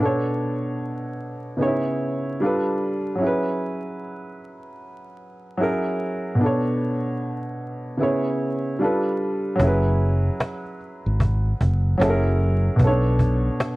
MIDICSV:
0, 0, Header, 1, 4, 480
1, 0, Start_track
1, 0, Time_signature, 4, 2, 24, 8
1, 0, Tempo, 800000
1, 8258, End_track
2, 0, Start_track
2, 0, Title_t, "Upright piano"
2, 0, Program_c, 0, 0
2, 0, Control_c, 0, 64, 127
2, 0, Note_on_c, 0, 47, 63
2, 0, Note_on_c, 0, 59, 56
2, 0, Note_on_c, 0, 62, 63
2, 6, Control_c, 0, 64, 0
2, 14, Note_on_c, 0, 69, 59
2, 32, Note_on_c, 0, 73, 73
2, 103, Control_c, 0, 64, 127
2, 923, Note_off_c, 0, 47, 0
2, 930, Note_off_c, 0, 59, 0
2, 940, Note_off_c, 0, 62, 0
2, 942, Note_on_c, 0, 49, 64
2, 947, Note_off_c, 0, 69, 0
2, 949, Note_on_c, 0, 59, 61
2, 956, Note_off_c, 0, 73, 0
2, 957, Note_on_c, 0, 63, 50
2, 965, Control_c, 0, 64, 0
2, 967, Note_on_c, 0, 68, 64
2, 975, Note_on_c, 0, 73, 78
2, 998, Note_on_c, 0, 64, 64
2, 1008, Note_off_c, 0, 63, 0
2, 1069, Control_c, 0, 64, 127
2, 1430, Note_off_c, 0, 49, 0
2, 1434, Note_off_c, 0, 59, 0
2, 1441, Note_on_c, 0, 55, 69
2, 1442, Note_off_c, 0, 68, 0
2, 1446, Note_off_c, 0, 73, 0
2, 1446, Control_c, 0, 64, 0
2, 1449, Note_on_c, 0, 62, 63
2, 1458, Note_off_c, 0, 64, 0
2, 1458, Note_on_c, 0, 65, 65
2, 1466, Note_on_c, 0, 69, 61
2, 1476, Note_on_c, 0, 71, 72
2, 1540, Control_c, 0, 64, 127
2, 1893, Note_on_c, 0, 54, 61
2, 1909, Note_on_c, 0, 61, 64
2, 1919, Note_off_c, 0, 55, 0
2, 1923, Note_off_c, 0, 62, 0
2, 1926, Control_c, 0, 64, 0
2, 1927, Note_on_c, 0, 64, 58
2, 1928, Note_off_c, 0, 65, 0
2, 1932, Note_off_c, 0, 69, 0
2, 1937, Note_off_c, 0, 71, 0
2, 1942, Note_on_c, 0, 68, 57
2, 1960, Note_on_c, 0, 71, 80
2, 2040, Control_c, 0, 64, 127
2, 3321, Note_off_c, 0, 54, 0
2, 3329, Note_off_c, 0, 61, 0
2, 3338, Note_off_c, 0, 64, 0
2, 3345, Note_on_c, 0, 54, 70
2, 3346, Note_off_c, 0, 68, 0
2, 3352, Note_on_c, 0, 61, 57
2, 3355, Note_off_c, 0, 71, 0
2, 3362, Note_on_c, 0, 64, 65
2, 3366, Control_c, 0, 64, 0
2, 3368, Note_on_c, 0, 68, 66
2, 3377, Note_on_c, 0, 70, 76
2, 3477, Control_c, 0, 64, 127
2, 3809, Note_on_c, 0, 47, 68
2, 3825, Note_on_c, 0, 59, 60
2, 3831, Note_off_c, 0, 54, 0
2, 3835, Note_off_c, 0, 61, 0
2, 3840, Note_off_c, 0, 64, 0
2, 3843, Note_off_c, 0, 68, 0
2, 3843, Note_on_c, 0, 62, 63
2, 3845, Control_c, 0, 64, 0
2, 3848, Note_off_c, 0, 70, 0
2, 3858, Note_on_c, 0, 69, 60
2, 3875, Note_on_c, 0, 73, 76
2, 3946, Control_c, 0, 64, 127
2, 4764, Note_off_c, 0, 47, 0
2, 4772, Note_off_c, 0, 59, 0
2, 4781, Note_off_c, 0, 62, 0
2, 4785, Note_on_c, 0, 49, 67
2, 4789, Note_off_c, 0, 69, 0
2, 4795, Note_on_c, 0, 59, 63
2, 4798, Note_off_c, 0, 73, 0
2, 4803, Note_on_c, 0, 64, 61
2, 4806, Control_c, 0, 64, 0
2, 4810, Note_on_c, 0, 68, 66
2, 4819, Note_on_c, 0, 73, 76
2, 4924, Control_c, 0, 64, 127
2, 5272, Note_off_c, 0, 49, 0
2, 5273, Note_on_c, 0, 55, 69
2, 5276, Note_off_c, 0, 59, 0
2, 5280, Note_off_c, 0, 64, 0
2, 5281, Note_on_c, 0, 62, 63
2, 5284, Note_off_c, 0, 68, 0
2, 5285, Control_c, 0, 64, 0
2, 5288, Note_off_c, 0, 73, 0
2, 5288, Note_on_c, 0, 65, 61
2, 5298, Note_on_c, 0, 69, 59
2, 5306, Note_on_c, 0, 71, 71
2, 5395, Control_c, 0, 64, 127
2, 5734, Note_on_c, 0, 54, 75
2, 5748, Note_on_c, 0, 61, 62
2, 5755, Note_off_c, 0, 55, 0
2, 5759, Note_off_c, 0, 62, 0
2, 5763, Note_off_c, 0, 65, 0
2, 5766, Control_c, 0, 64, 0
2, 5768, Note_off_c, 0, 69, 0
2, 5768, Note_on_c, 0, 64, 63
2, 5772, Note_off_c, 0, 71, 0
2, 5783, Note_on_c, 0, 68, 59
2, 5800, Note_on_c, 0, 71, 75
2, 5877, Control_c, 0, 64, 127
2, 7162, Note_off_c, 0, 54, 0
2, 7169, Note_off_c, 0, 61, 0
2, 7179, Note_off_c, 0, 64, 0
2, 7187, Note_off_c, 0, 68, 0
2, 7187, Note_on_c, 0, 54, 71
2, 7195, Note_off_c, 0, 71, 0
2, 7197, Note_on_c, 0, 61, 73
2, 7205, Note_on_c, 0, 64, 64
2, 7206, Control_c, 0, 64, 0
2, 7213, Note_on_c, 0, 68, 70
2, 7221, Note_on_c, 0, 69, 62
2, 7260, Note_off_c, 0, 69, 0
2, 7260, Note_on_c, 0, 70, 79
2, 7317, Control_c, 0, 64, 127
2, 7656, Note_on_c, 0, 47, 71
2, 7672, Note_off_c, 0, 54, 0
2, 7673, Note_on_c, 0, 59, 62
2, 7677, Note_off_c, 0, 61, 0
2, 7682, Note_off_c, 0, 64, 0
2, 7685, Note_off_c, 0, 68, 0
2, 7685, Control_c, 0, 64, 0
2, 7690, Note_on_c, 0, 61, 56
2, 7705, Note_on_c, 0, 69, 64
2, 7709, Note_off_c, 0, 70, 0
2, 7723, Note_on_c, 0, 73, 84
2, 7728, Note_on_c, 0, 62, 62
2, 7734, Note_off_c, 0, 61, 0
2, 7794, Control_c, 0, 64, 127
2, 8258, Note_off_c, 0, 47, 0
2, 8258, Note_off_c, 0, 59, 0
2, 8258, Note_off_c, 0, 62, 0
2, 8258, Note_off_c, 0, 69, 0
2, 8258, Note_off_c, 0, 73, 0
2, 8258, End_track
3, 0, Start_track
3, 0, Title_t, "Fingered electric bass"
3, 0, Program_c, 1, 33
3, 5759, Note_on_c, 1, 30, 90
3, 6172, Note_off_c, 1, 30, 0
3, 6635, Note_on_c, 1, 32, 84
3, 6914, Note_off_c, 1, 32, 0
3, 6966, Note_on_c, 1, 30, 90
3, 7169, Note_off_c, 1, 30, 0
3, 7199, Note_on_c, 1, 30, 95
3, 7612, Note_off_c, 1, 30, 0
3, 7679, Note_on_c, 1, 35, 98
3, 8092, Note_off_c, 1, 35, 0
3, 8258, End_track
4, 0, Start_track
4, 0, Title_t, "Cajon"
4, 5757, Note_on_c, 9, 36, 113
4, 5817, Note_off_c, 9, 36, 0
4, 5908, Note_on_c, 9, 38, 28
4, 5968, Note_off_c, 9, 38, 0
4, 5997, Note_on_c, 9, 38, 20
4, 6057, Note_off_c, 9, 38, 0
4, 6241, Note_on_c, 9, 38, 107
4, 6245, Note_off_c, 9, 38, 0
4, 6245, Note_on_c, 9, 38, 88
4, 6305, Note_off_c, 9, 38, 0
4, 6391, Note_on_c, 9, 38, 29
4, 6451, Note_off_c, 9, 38, 0
4, 6481, Note_on_c, 9, 38, 27
4, 6541, Note_off_c, 9, 38, 0
4, 6719, Note_on_c, 9, 36, 91
4, 6779, Note_off_c, 9, 36, 0
4, 6876, Note_on_c, 9, 38, 21
4, 6936, Note_off_c, 9, 38, 0
4, 6964, Note_on_c, 9, 36, 94
4, 7024, Note_off_c, 9, 36, 0
4, 7210, Note_on_c, 9, 38, 112
4, 7214, Note_off_c, 9, 38, 0
4, 7214, Note_on_c, 9, 38, 88
4, 7274, Note_off_c, 9, 38, 0
4, 7359, Note_on_c, 9, 38, 25
4, 7419, Note_off_c, 9, 38, 0
4, 7439, Note_on_c, 9, 38, 23
4, 7499, Note_off_c, 9, 38, 0
4, 7676, Note_on_c, 9, 36, 105
4, 7736, Note_off_c, 9, 36, 0
4, 7827, Note_on_c, 9, 38, 25
4, 7887, Note_off_c, 9, 38, 0
4, 7915, Note_on_c, 9, 36, 81
4, 7975, Note_off_c, 9, 36, 0
4, 8161, Note_on_c, 9, 38, 108
4, 8165, Note_off_c, 9, 38, 0
4, 8165, Note_on_c, 9, 38, 87
4, 8225, Note_off_c, 9, 38, 0
4, 8258, End_track
0, 0, End_of_file